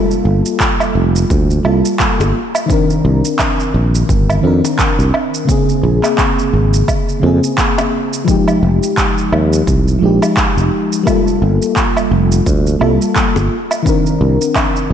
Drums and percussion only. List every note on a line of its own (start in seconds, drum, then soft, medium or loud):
0.11 shaker soft
0.46 shaker medium
0.60 kick loud
0.60 clap loud
0.60 shaker medium
0.80 low woodblock medium
0.80 shaker soft
1.16 shaker medium
1.30 kick loud
1.30 shaker medium
1.50 shaker soft
1.65 low woodblock medium
1.85 shaker medium
2.00 kick loud
2.00 clap medium
2.00 shaker soft
2.20 high bongo medium
2.20 shaker soft
2.55 low woodblock medium
2.55 shaker medium
2.70 kick loud
2.70 shaker medium
2.90 shaker soft
3.25 shaker medium
3.39 kick loud
3.39 clap loud
3.39 low woodblock medium
3.39 shaker medium
3.60 shaker soft
3.95 shaker medium
4.09 kick loud
4.09 shaker medium
4.30 low woodblock medium
4.30 shaker soft
4.65 high bongo soft
4.65 shaker medium
4.79 kick loud
4.79 clap medium
4.79 shaker medium
4.99 shaker soft
5.14 low woodblock medium
5.34 shaker medium
5.49 kick loud
5.49 shaker medium
5.69 shaker soft
6.04 clap soft
6.04 low woodblock medium
6.04 shaker medium
6.18 kick loud
6.18 clap medium
6.18 shaker medium
6.39 shaker soft
6.74 shaker medium
6.88 kick loud
6.88 low woodblock medium
6.88 shaker medium
7.09 shaker soft
7.44 shaker medium
7.58 kick loud
7.58 clap medium
7.58 shaker medium
7.78 high bongo medium
7.78 low woodblock medium
7.78 shaker soft
8.13 shaker medium
8.28 kick loud
8.28 shaker medium
8.48 low woodblock medium
8.48 shaker soft
8.83 shaker medium
8.98 kick loud
8.98 clap medium
8.98 shaker medium
9.18 shaker soft
9.33 low woodblock medium
9.53 shaker medium
9.67 kick loud
9.67 shaker soft
9.88 shaker soft
10.22 high bongo medium
10.22 low woodblock medium
10.22 shaker medium
10.37 kick loud
10.37 clap medium
10.37 shaker medium
10.58 shaker soft
10.93 shaker medium
11.07 kick loud
11.07 low woodblock medium
11.07 shaker medium
11.27 shaker soft
11.62 shaker medium
11.76 kick loud
11.76 clap medium
11.76 shaker soft
11.97 low woodblock medium
11.97 shaker soft
12.32 shaker medium
12.46 kick medium
12.46 shaker medium
12.67 shaker soft
12.81 low woodblock medium
13.02 shaker medium
13.16 kick loud
13.16 clap medium
13.16 shaker soft
13.36 high bongo medium
13.36 shaker soft
13.71 low woodblock medium
13.71 shaker medium
13.86 kick loud
13.86 shaker medium
14.06 shaker soft
14.41 shaker medium
14.56 kick loud
14.56 clap medium
14.56 low woodblock medium
14.56 shaker soft
14.76 shaker soft